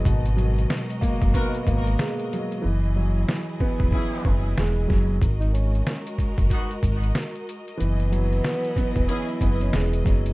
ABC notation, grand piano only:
X:1
M:4/4
L:1/8
Q:"Swing 16ths" 1/4=93
K:G#m
V:1 name="Grand piano" clef=bass
B,, F,2 A, B, A, G, F, | E, F,2 B, E B, G, F, | z8 | E, F,2 B, E B, G, F, |]